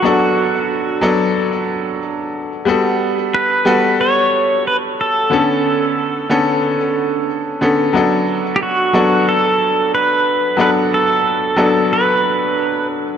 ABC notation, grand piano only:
X:1
M:4/4
L:1/16
Q:"Swing 16ths" 1/4=91
K:D
V:1 name="Grand piano"
[F,B,DA]6 [F,B,DA] z8 z | [G,B,FA]6 [G,B,FA] z8 z | [D,B,CA]6 [D,B,CA] z6 z [D,B,CA]2 | [F,B,DA]6 [F,B,DA] z8 z |
[F,B,DA]6 [F,B,DA] z8 z |]